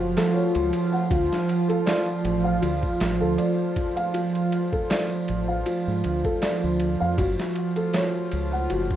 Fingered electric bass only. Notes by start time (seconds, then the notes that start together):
Already playing: F#1
0.55 C#2
1.11 D2
2.25 A1
2.63 D2
3.01 A1
3.22 D2
5.29 A1
5.87 G#2
6.05 D2
6.64 D2
7.01 F2
7.18 F#1
8.33 C#2
8.71 F#1